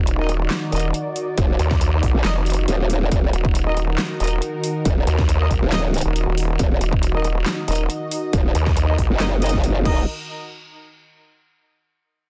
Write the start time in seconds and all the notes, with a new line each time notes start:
Already playing: D#1 D#3 D#4 F#4 D5
0.07 closed hi-hat
0.19 D#4 A#4 D#5
0.29 closed hi-hat
0.51 snare, clap, closed hi-hat
0.72 D#1 D#4 A#4 D#5, closed hi-hat
0.76 closed hi-hat
0.80 closed hi-hat
0.94 closed hi-hat
1.16 open hi-hat
1.38 D#1, kick, closed hi-hat
1.59 D#2, closed hi-hat
1.71 kick, snare
1.81 closed hi-hat
2.03 A#1, kick, open hi-hat
2.14 A#1
2.25 F1 D#4 A#4 D#5, snare, clap, closed hi-hat
2.46 closed hi-hat
2.50 closed hi-hat
2.53 closed hi-hat
2.68 D#1, closed hi-hat
2.90 open hi-hat
3.12 D#1 A#4, kick, closed hi-hat
3.33 D#1, closed hi-hat
3.45 kick
3.55 closed hi-hat
3.66 D#4 A#4 D#5
3.77 closed hi-hat
3.98 snare, clap, closed hi-hat
4.20 D#1 D#4 A#4 D#5, closed hi-hat
4.24 closed hi-hat
4.27 closed hi-hat
4.42 closed hi-hat
4.64 open hi-hat
4.85 D#1, kick, closed hi-hat
5.07 D#2, closed hi-hat
5.19 kick, snare
5.29 closed hi-hat
5.40 D#4 A#4 D#5
5.51 A#1, kick, closed hi-hat
5.62 D#1
5.72 D#4 A#4 D#5, snare, clap, closed hi-hat
5.94 closed hi-hat
5.98 closed hi-hat
6.01 closed hi-hat
6.06 D#1
6.16 closed hi-hat
6.27 D#1
6.38 open hi-hat
6.59 D#1 D#5, kick, closed hi-hat
6.81 D#1, closed hi-hat
6.93 kick
7.03 closed hi-hat
7.14 D#4 A#4 D#5
7.24 closed hi-hat
7.46 snare, clap, closed hi-hat
7.68 D#1 D#4 A#4 D#5, closed hi-hat
7.72 closed hi-hat
7.75 closed hi-hat
7.90 closed hi-hat
8.11 open hi-hat
8.33 D#1, kick, closed hi-hat
8.55 D#2, closed hi-hat
8.66 kick, snare
8.77 closed hi-hat
8.88 D#4 A#4 D#5
8.98 A#1, kick, open hi-hat
9.10 F#1
9.20 D#4 A#4 D#5, snare, clap, closed hi-hat
9.42 D#4 A#4 D#5, closed hi-hat
9.46 closed hi-hat
9.49 closed hi-hat
9.53 kick, snare
9.64 closed hi-hat
9.85 D#1 D#4 A#4 D#5, kick, crash